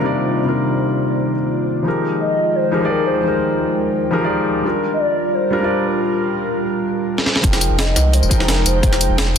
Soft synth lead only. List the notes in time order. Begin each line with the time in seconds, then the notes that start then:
2.20 D#5
2.55 C5
2.90 A#4
3.07 C5
4.93 D#5
5.00 D5
5.34 C5
5.87 A#4
7.78 D#5
8.13 C5
8.48 A#4
8.65 C5